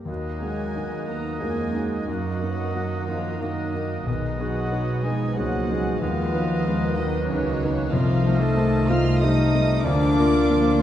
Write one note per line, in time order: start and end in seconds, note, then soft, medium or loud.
0.00 0.11 A#3 soft
0.00 0.11 D4 soft
0.00 0.11 G4 soft
0.00 0.11 A#4 soft
0.05 0.40 D#2 medium
0.05 1.38 D#2 soft
0.05 1.38 F#3 soft
0.05 2.03 A#3 soft
0.05 0.72 A#3 soft
0.05 0.72 D#4 soft
0.05 2.04 D#5 soft
0.05 2.04 F#6 soft
0.41 1.05 G#3 medium
0.41 0.73 A#3 soft
0.41 0.73 D#4 soft
0.41 0.73 F#4 soft
0.41 1.05 G#4 medium
0.41 1.05 G#5 medium
0.75 1.41 D#3 soft
0.75 1.06 A#3 soft
0.75 1.43 B3 soft
0.75 1.06 D#4 soft
0.75 1.41 D#4 soft
0.75 1.06 F#4 soft
1.07 1.39 A#3 soft
1.07 1.42 A#3 soft
1.07 1.43 A#3 soft
1.07 1.39 D#4 soft
1.07 1.39 F#4 soft
1.07 1.42 A#4 soft
1.07 1.43 A#5 medium
1.39 2.08 F2 soft
1.39 1.74 F3 soft
1.39 2.07 G#3 medium
1.39 2.08 G#3 medium
1.39 1.71 A#3 soft
1.39 2.08 A#3 soft
1.39 2.07 A#3 soft
1.39 2.08 C#4 soft
1.39 1.72 D#4 soft
1.39 1.72 F#4 soft
1.39 2.06 G#4 medium
1.39 2.00 G#5 medium
1.74 2.07 D#3 soft
1.74 2.04 A#3 soft
1.74 2.04 D#4 soft
1.74 2.04 F#4 soft
2.01 2.08 G#5 soft
2.07 2.40 F#2 medium
2.07 4.04 F#2 medium
2.07 2.73 D#3 soft
2.07 3.06 F#3 medium
2.07 2.73 F#3 soft
2.07 3.08 F#3 medium
2.07 3.39 A#3 medium
2.07 2.41 A#3 soft
2.07 4.04 D#4 soft
2.07 3.06 F#4 medium
2.07 3.40 D#5 medium
2.07 3.09 F#5 medium
2.07 3.40 F#6 soft
2.42 2.72 A#3 soft
2.42 2.75 B3 soft
2.42 2.72 D#4 soft
2.42 2.72 F#4 soft
2.74 3.40 D#3 soft
2.74 3.40 F#3 soft
2.74 3.05 A#3 soft
2.74 3.07 A#3 soft
2.74 3.05 D#4 soft
2.74 3.05 F#4 soft
3.07 3.41 F3 medium
3.07 3.42 F3 medium
3.07 3.38 A#3 soft
3.07 3.39 A#3 soft
3.07 3.39 D#4 soft
3.07 3.41 F4 medium
3.07 3.39 F#4 soft
3.07 3.42 F5 medium
3.40 4.05 D#3 soft
3.40 4.07 D#3 medium
3.40 4.08 D#3 medium
3.40 4.06 F#3 soft
3.40 4.06 A#3 soft
3.40 4.09 A#3 soft
3.40 3.72 A#3 soft
3.40 4.07 D#4 medium
3.40 3.72 D#4 soft
3.40 3.72 F#4 soft
3.40 4.06 D#5 soft
3.40 4.08 D#5 medium
3.40 4.06 F#6 soft
3.74 4.04 A#3 soft
3.74 4.04 D#4 soft
3.74 4.05 F#4 soft
4.06 4.39 B1 medium
4.06 5.36 B1 medium
4.06 4.39 D#3 medium
4.06 5.38 G#3 medium
4.06 5.99 B3 medium
4.06 4.71 D#4 soft
4.06 5.36 D#5 medium
4.06 5.11 F#6 soft
4.39 4.72 D#3 medium
4.39 5.02 F#3 medium
4.39 4.69 B3 soft
4.39 4.70 D#4 soft
4.39 5.07 F#4 medium
4.39 4.70 G#4 medium
4.39 5.02 F#5 medium
4.71 5.06 F#3 medium
4.71 5.02 B3 soft
4.71 5.02 D#4 soft
4.71 5.37 D#4 soft
4.71 5.02 G#4 soft
5.04 6.02 F3 medium
5.04 5.38 G#3 medium
5.04 5.35 B3 soft
5.04 5.35 D#4 soft
5.04 5.40 G#4 medium
5.04 5.35 G#4 soft
5.04 5.38 G#5 medium
5.37 6.02 C#2 medium
5.37 6.01 F#3 medium
5.37 6.02 F#3 medium
5.37 6.02 G#3 medium
5.37 5.70 A#3 medium
5.37 5.66 B3 soft
5.37 6.00 C#4 medium
5.37 5.67 D#4 soft
5.37 6.01 F#4 medium
5.37 5.66 G#4 medium
5.37 6.01 D#5 medium
5.37 6.01 F#5 medium
5.37 5.99 F#6 medium
5.69 6.00 G#3 medium
5.69 5.98 B3 soft
5.69 5.99 D#4 soft
5.69 5.99 G#4 medium
6.00 7.27 D#2 medium
6.00 6.33 D#2 medium
6.00 7.91 D#3 medium
6.00 6.97 F3 medium
6.00 6.96 F3 medium
6.00 6.33 G#3 medium
6.00 6.64 B3 medium
6.00 7.67 B3 medium
6.00 6.97 F4 medium
6.00 7.64 D#5 medium
6.00 6.96 F5 medium
6.00 7.88 F#6 medium
6.33 6.65 F#3 medium
6.33 6.63 B3 medium
6.33 6.63 D#4 medium
6.33 6.63 B4 medium
6.64 6.97 G#3 medium
6.64 9.22 A#3 medium
6.64 6.95 B3 medium
6.64 7.27 D#4 medium
6.64 6.95 D#4 medium
6.64 6.95 B4 medium
6.95 7.29 D#3 medium
6.95 7.92 F#3 medium
6.95 7.31 D#4 medium
6.95 7.28 D#5 medium
7.00 7.28 B3 medium
7.00 7.28 D#4 medium
7.00 7.29 B4 medium
7.28 7.93 C#2 medium
7.28 7.93 C#3 medium
7.28 7.59 B3 soft
7.28 7.93 C#4 medium
7.28 7.91 D#4 medium
7.28 7.59 D#4 soft
7.28 7.90 C#5 medium
7.32 7.60 B4 medium
7.64 7.91 B3 medium
7.64 7.91 D#4 medium
7.64 7.92 B4 medium
7.90 9.85 C2 medium
7.90 8.24 C2 medium
7.90 9.19 D#3 medium
7.90 8.56 F3 medium
7.90 8.41 F3 medium
7.90 8.40 F3 medium
7.90 9.18 A3 medium
7.90 8.42 F4 medium
7.90 8.56 F4 medium
7.90 9.17 D#5 medium
7.90 8.40 F5 medium
7.90 9.20 F6 medium
8.26 8.55 A3 medium
8.26 8.55 D#4 medium
8.26 8.56 C5 medium
8.39 8.89 A3 medium
8.39 8.90 A3 medium
8.39 8.89 A4 medium
8.39 8.89 A5 medium
8.57 8.89 F3 medium
8.57 8.87 A3 medium
8.57 9.21 C4 medium
8.57 8.87 D#4 medium
8.57 8.87 C5 medium
8.89 9.22 A3 medium
8.89 9.19 A3 medium
8.89 9.19 D#4 medium
8.89 9.22 F4 medium
8.89 9.19 C5 medium
8.89 9.21 F5 medium
8.89 9.22 F6 loud
9.20 9.54 F3 medium
9.20 9.52 G3 medium
9.20 9.86 A3 medium
9.20 9.84 A3 medium
9.20 9.51 A3 medium
9.20 9.84 C4 medium
9.20 9.86 D#4 medium
9.20 9.51 D#4 medium
9.20 9.52 C5 medium
9.20 9.86 D#5 medium
9.20 9.87 D#5 medium
9.20 9.83 D#6 loud
9.20 9.83 F6 medium
9.53 9.85 G3 medium
9.53 9.83 A3 medium
9.53 9.83 D#4 medium
9.53 9.83 C5 medium
9.83 10.82 D2 medium
9.83 10.16 D2 medium
9.83 10.17 F3 medium
9.83 10.49 A#3 medium
9.83 10.82 A#3 medium
9.83 10.81 D4 loud
9.83 10.80 D4 medium
9.83 10.82 F4 medium
9.83 10.82 D5 medium
9.83 10.82 D5 loud
9.83 10.80 D6 loud
9.83 10.82 F6 medium
10.17 10.82 A#3 medium
10.17 10.47 A#3 medium
10.17 10.47 F4 medium
10.17 10.47 A#4 medium
10.48 10.80 F3 medium
10.48 10.78 A#3 medium
10.48 10.82 A#3 medium
10.48 10.78 F4 medium
10.48 10.78 A#4 medium